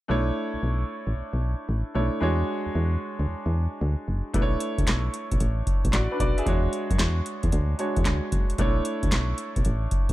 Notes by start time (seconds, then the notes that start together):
0.08 B1 A3 D4 E4 C#5
0.54 B1
0.63 B1
1.07 A1
1.16 B1
1.33 B1
1.69 A1
1.94 B1 A3 D4 E4 C#5
2.20 E2 G#3 D4 F#4 C#5
2.66 E2
2.75 E2
3.19 D2
3.29 E2
3.46 E2
3.81 D2
4.08 F#1
4.33 B1 A3 D4 E4 B4, kick, closed hi-hat
4.42 C#5
4.60 closed hi-hat
4.78 D2, kick, closed hi-hat
4.87 B1, snare, clap, closed hi-hat
5.14 closed hi-hat
5.31 B1, kick, closed hi-hat
5.40 A1, closed hi-hat
5.67 kick, closed hi-hat
5.85 B1, kick, closed hi-hat
5.93 A1 F#4 D5, snare, clap, closed hi-hat
6.11 D4 B4
6.20 B1 F#4 D5, kick, closed hi-hat
6.38 G#4 E5, closed hi-hat
6.46 E2 G#3 D4 F#4 C#5, kick, closed hi-hat
6.73 closed hi-hat
6.90 F#2, kick, closed hi-hat
6.99 E2, snare, clap, closed hi-hat
7.26 closed hi-hat
7.43 E2, kick, closed hi-hat
7.52 D2, closed hi-hat
7.79 G#3 D4 F#4 C#5, closed hi-hat
7.96 E2, kick, closed hi-hat
8.05 D2, snare, clap, closed hi-hat
8.32 F#1, kick, closed hi-hat
8.50 closed hi-hat
8.58 B1 A3 D4 E4 C#5, kick, closed hi-hat
8.85 closed hi-hat
9.03 D2, kick, closed hi-hat
9.11 B1, snare, clap, closed hi-hat
9.38 closed hi-hat
9.56 B1, kick, closed hi-hat
9.65 A1, closed hi-hat
9.91 kick, closed hi-hat
10.09 B1, kick, closed hi-hat